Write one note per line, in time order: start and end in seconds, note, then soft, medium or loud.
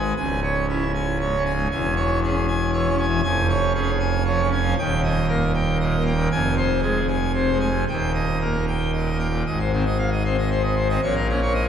0.00 0.13 G#1 medium
0.00 0.13 G#2 medium
0.00 0.15 G#3 medium
0.00 0.13 G#5 medium
0.17 1.67 C#1 medium
0.17 1.67 C#2 medium
0.17 0.40 G#5 medium
0.43 0.66 C#5 medium
0.69 0.84 C#4 medium
0.69 0.92 E4 medium
0.95 1.17 G#5 medium
1.20 1.36 G#2 medium
1.20 1.43 C#5 medium
1.37 1.52 C#4 medium
1.46 1.67 G#5 medium
1.54 1.69 G#2 medium
1.71 3.21 E1 medium
1.71 3.20 E2 medium
1.71 1.94 G#5 loud
1.96 2.19 C#5 medium
2.23 2.38 C#4 medium
2.23 2.46 G#4 medium
2.48 2.71 G#5 medium
2.73 2.88 E3 medium
2.73 2.96 C#5 medium
2.90 3.06 C#4 medium
2.99 3.21 G#5 medium
3.06 3.21 E3 medium
3.23 4.73 F1 loud
3.23 4.73 F2 medium
3.23 3.47 G#5 loud
3.49 3.72 C#5 medium
3.75 3.90 C#4 medium
3.75 3.98 G#4 medium
4.00 4.23 G#5 medium
4.25 4.41 F3 medium
4.25 4.49 C#5 medium
4.43 4.59 C#4 medium
4.52 4.74 G#5 medium
4.61 4.76 F3 medium
4.78 6.28 D#1 medium
4.78 6.28 D#2 loud
4.78 5.01 G5 loud
5.04 5.26 D#5 loud
5.28 5.44 A#3 medium
5.28 5.51 A#4 medium
5.54 5.77 G5 medium
5.80 5.96 A#2 medium
5.80 6.03 D#5 medium
5.98 6.13 A#3 medium
6.06 6.28 G5 medium
6.15 6.29 A#2 medium
6.32 7.84 F1 loud
6.32 7.84 F2 medium
6.32 6.55 G#5 loud
6.57 6.80 C5 medium
6.82 6.98 G#3 medium
6.82 7.06 G#4 medium
7.08 7.32 G#5 medium
7.34 7.50 C3 medium
7.34 7.58 C5 medium
7.52 7.68 G#3 medium
7.61 7.84 G#5 medium
7.70 7.85 C3 medium
7.88 9.43 D#1 medium
7.88 9.43 D#2 medium
7.88 8.12 G5 medium
8.14 8.38 D#5 medium
8.41 8.57 A#3 medium
8.41 8.65 A#4 medium
8.68 8.91 G5 medium
8.94 9.10 A#2 medium
8.94 9.17 D#5 medium
9.11 9.27 A#3 medium
9.20 9.42 G5 medium
9.29 9.44 A#2 medium
9.46 10.98 G#1 medium
9.46 10.98 G#2 medium
9.46 9.58 D#5 medium
9.60 9.71 C5 medium
9.72 9.84 D#3 medium
9.72 9.84 C4 medium
9.86 9.97 D#5 medium
9.98 10.10 F5 medium
10.12 10.23 D#5 medium
10.25 10.36 C4 medium
10.25 10.36 C5 medium
10.38 10.49 D#5 medium
10.51 10.62 C5 medium
10.63 10.75 D#5 medium
10.76 10.88 C5 medium
10.89 11.00 C4 medium
10.89 11.00 D#5 medium
11.03 11.69 A#1 loud
11.03 11.69 A#2 loud
11.03 11.14 C#5 medium
11.16 11.27 A#4 medium
11.29 11.40 A#3 loud
11.29 11.40 C#4 medium
11.42 11.53 C#5 medium
11.54 11.65 D#5 medium